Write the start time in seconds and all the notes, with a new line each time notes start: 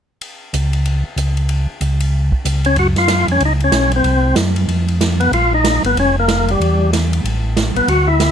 0.21 ride
0.53 C#2, hi-hat pedal, ride
0.73 ride
0.85 ride
1.16 C#2, hi-hat pedal, ride
1.37 ride
1.49 ride
1.81 C#2, hi-hat pedal, ride
2.00 ride
2.32 kick
2.45 C#2, hi-hat pedal, ride
2.65 C#4, ride
2.76 F#2 F#4, ride
2.96 F4, snare, ride
3.08 snare, hi-hat pedal, ride
3.27 F2, ride
3.32 C#4
3.40 C#2, ride
3.45 D#4
3.60 C#4, ride
3.72 B1, snare, hi-hat pedal, ride
3.92 ride
3.96 C4
4.04 C2, ride
4.36 F#2, snare, hi-hat pedal, ride
4.56 ride
4.68 F2, ride
4.88 ride
5.01 snare, hi-hat pedal, ride
5.20 B3, ride
5.32 A#1 F4, ride
5.54 D#4
5.64 snare, hi-hat pedal, ride
5.83 G#1 B3, ride
5.96 F1 C#4, ride
6.19 A#3
6.28 snare, hi-hat pedal, ride
6.48 G3, ride
6.60 E2, ride
6.93 snare, hi-hat pedal, ride
7.13 ride
7.24 A1, ride
7.57 snare, hi-hat pedal, ride
7.75 A1 B3, ride
7.87 D2 F#4, ride
8.07 E4
8.20 snare, hi-hat pedal, ride